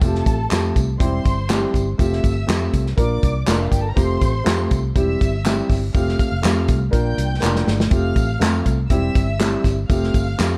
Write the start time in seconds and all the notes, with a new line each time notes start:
0.01 F1 A3 C4 F4 G4 A4 A5, kick, closed hi-hat, tambourine
0.15 snare
0.26 A1, kick, closed hi-hat, tambourine
0.49 F2 A3 C4 F4 G4, snare, clap, closed hi-hat, tambourine
0.76 C2, kick, closed hi-hat, tambourine
0.98 E1 G3 C4 E4 G4 C5 C6, kick, closed hi-hat
1.25 G1, kick, closed hi-hat, tambourine
1.49 G3 C4 E4 G4, snare, clap, closed hi-hat, tambourine
1.74 G1, kick, closed hi-hat, tambourine
1.98 F1 A3 C4 F4 G4 E5 E6, kick, closed hi-hat, tambourine
2.13 snare
2.24 G1, kick, closed hi-hat, tambourine
2.47 F2 A3 C4 F4 G4, snare, clap, closed hi-hat, tambourine
2.73 C2, kick, closed hi-hat, tambourine
2.86 snare
2.97 A#1 A#3 D4 F4 A#4 D5 D6, kick, closed hi-hat
3.23 C2, kick, closed hi-hat, tambourine
3.47 F1 A#3 D4 F4 A#4 D5, snare, clap, closed hi-hat, tambourine
3.57 E4 E5
3.63 F4 F5
3.70 G1 G4 G5, kick, closed hi-hat, tambourine
3.81 A4 A5
3.89 A#4 A#5
3.96 F1 A3 C4 F4 G4 C5 C6, kick, closed hi-hat, tambourine
4.21 A1, kick, closed hi-hat, tambourine
4.44 F2 A3 C4 F4 G4, snare, clap, closed hi-hat, tambourine
4.71 C2, kick, closed hi-hat, tambourine
4.95 E1 G3 C4 E4 G4 E5 E6, kick, closed hi-hat, tambourine
5.21 G1, kick, closed hi-hat, tambourine
5.45 G3 C4 E4 G4, snare, clap, closed hi-hat, tambourine
5.70 G1, kick, snare, open hi-hat, tambourine
5.94 F1 A3 C4 F4 G4 F5 F6, kick, closed hi-hat, tambourine
6.08 snare
6.19 kick, closed hi-hat, tambourine
6.32 F1
6.42 F2 A3 C4 F4 G4, snare, clap, closed hi-hat, tambourine
6.68 C2, kick, closed hi-hat, tambourine
6.91 A#1 A#3 D4 F4 A#4 G5 G6, kick, closed hi-hat, tambourine
7.18 C2, closed hi-hat, tambourine
7.40 F1 A#3 D4 F4 A#4, snare, clap, tambourine
7.56 snare
7.67 G1, snare, tambourine
7.80 snare
7.90 F1 A3 C4 F4 G4 F5 F6, kick, closed hi-hat, tambourine
8.16 A1, kick, closed hi-hat, tambourine
8.39 F2 A3 C4 F4 A4, snare, clap, closed hi-hat, tambourine
8.65 C2, kick, closed hi-hat, tambourine
8.90 E1 G3 C4 E4 G4 E5 E6, kick, closed hi-hat
9.15 G1, kick, closed hi-hat, tambourine
9.39 G3 C4 E4 G4, snare, clap, closed hi-hat, tambourine
9.64 G1, kick, snare, closed hi-hat, tambourine
9.89 F1 A3 C4 F4 G4 F5 F6, kick, closed hi-hat, tambourine
10.03 snare
10.14 G1, kick, closed hi-hat, tambourine
10.38 F2 A3 C4 F4 G4, snare, clap, closed hi-hat, tambourine